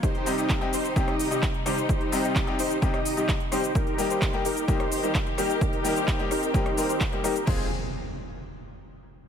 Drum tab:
CC |----------------|----------------|----------------|----------------|
HH |xxoxxxoxxxoxxxox|xxoxxxoxxxoxxxox|xxoxxxoxxxoxxxox|xxoxxxoxxxoxxxox|
SH |x-xxx-xxx-xxx-xx|x-xxx-xxx-xxx-xx|x-xxx-xxx-xxx-xx|x-xxx-xxx-xxx-xx|
CP |----x-------x---|----x-------x---|----x-------x---|----x-------x---|
SD |---------r----r-|---------r----r-|---------r----r-|------r--r----r-|
BD |o---o---o---o---|o---o---o---o---|o---o---o---o---|o---o---o---o---|

CC |x---------------|
HH |----------------|
SH |----------------|
CP |----------------|
SD |----------------|
BD |o---------------|